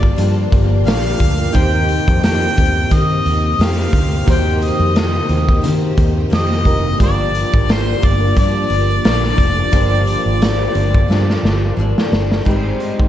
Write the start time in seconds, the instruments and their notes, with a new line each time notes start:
Already playing: fingered electric bass G1, string machine D3 A#3 F4 G4, steel-string acoustic guitar F3 A#3 D4, synth keys A#3 F4 G4 D5, harmonica D5
0.03 kick
0.16 steel-string acoustic guitar G2 F3 A#3 D4, fingered electric bass G2, closed hi-hat
0.52 fingered electric bass G1, kick, closed hi-hat
0.84 fingered electric bass A#1, steel-string acoustic guitar G2 F3 A#3 D4, synth keys A#3 F4 G4, harmonica F5, closed hi-hat
0.88 synth keys D5, snare
1.20 fingered electric bass D2, kick, open hi-hat
1.51 fingered electric bass D#2, string machine C3 A#3 D#4, steel-string acoustic guitar D#3 A#3 C4, synth keys A#3 D#4 G4
1.55 steel-string acoustic guitar G4, synth keys C5, harmonica G5, kick, closed hi-hat
1.89 closed hi-hat
2.08 fingered electric bass F2, kick
2.23 harmonica G5, snare, closed hi-hat
2.55 fingered electric bass D#2, steel-string acoustic guitar C4 G4, kick, closed hi-hat
2.59 steel-string acoustic guitar A#3
2.89 steel-string acoustic guitar D#3 A#3 C4 G4, fingered electric bass D#3, kick, closed hi-hat
2.94 harmonica D#5
3.26 fingered electric bass D#2, closed hi-hat
3.59 fingered electric bass F2, steel-string acoustic guitar A#3 C4 G4, harmonica F5, snare, closed hi-hat
3.80 snare
3.93 fingered electric bass D2, kick, closed hi-hat
4.25 fingered electric bass D#2, steel-string acoustic guitar D#3 A#3, synth keys A#3 D#4 F#4, kick, closed hi-hat
4.30 steel-string acoustic guitar C4 G4, synth keys C5, harmonica G5
4.35 synth keys G4
4.62 harmonica D#5, closed hi-hat
4.79 fingered electric bass F2
4.96 snare, closed hi-hat
5.29 fingered electric bass D#2, closed hi-hat
5.49 kick
5.62 steel-string acoustic guitar D#3 A#3 C4, fingered electric bass D#3, closed hi-hat
5.66 steel-string acoustic guitar G4
5.97 fingered electric bass D#2, kick, closed hi-hat
6.30 fingered electric bass F2, steel-string acoustic guitar D#3 A#3 C4 G4, snare, closed hi-hat
6.35 harmonica D#5
6.52 snare
6.64 fingered electric bass F1, synth keys A#3 D#4 G4 A#4, kick, closed hi-hat
6.97 fingered electric bass G1, steel-string acoustic guitar G2 F3, string machine D3 F4, synth keys G#3 F4 G4, kick, closed hi-hat
7.02 steel-string acoustic guitar A#3 D4, synth keys A#3 D5, harmonica D5
7.35 closed hi-hat
7.54 fingered electric bass G#1, kick
7.69 harmonica C5, snare, closed hi-hat
8.02 fingered electric bass G1, harmonica D5, kick, closed hi-hat
8.35 steel-string acoustic guitar G2 F3 A#3 D4, fingered electric bass G2, harmonica D5, kick, closed hi-hat
8.70 fingered electric bass G1, closed hi-hat
9.03 fingered electric bass A#1, steel-string acoustic guitar G2 F3 A#3 D4, snare, closed hi-hat
9.23 snare
9.38 fingered electric bass F1, kick, closed hi-hat
9.71 fingered electric bass G1, steel-string acoustic guitar G2 F3 A#3 D4, synth keys A#3 F4 G4, kick, closed hi-hat
9.76 synth keys C5
9.82 synth keys D5
10.07 closed hi-hat
10.26 fingered electric bass G#1
10.42 snare, closed hi-hat
10.75 fingered electric bass G1, steel-string acoustic guitar F3 A#3 D4, closed hi-hat
10.95 kick
11.08 steel-string acoustic guitar G2 F3 A#3 D4, fingered electric bass G2, snare
11.30 snare
11.43 fingered electric bass G1, snare
11.77 fingered electric bass G#1, steel-string acoustic guitar G2 F3 A#3
11.81 steel-string acoustic guitar D4
11.98 snare
12.12 fingered electric bass G1, snare
12.31 snare
12.45 fingered electric bass G#1, steel-string acoustic guitar G#2 G3, synth keys G#3 D#4 G5, kick, crash
12.49 steel-string acoustic guitar C4 D#4, synth keys B4
12.56 synth keys C5
12.80 closed hi-hat
12.99 fingered electric bass G#1, kick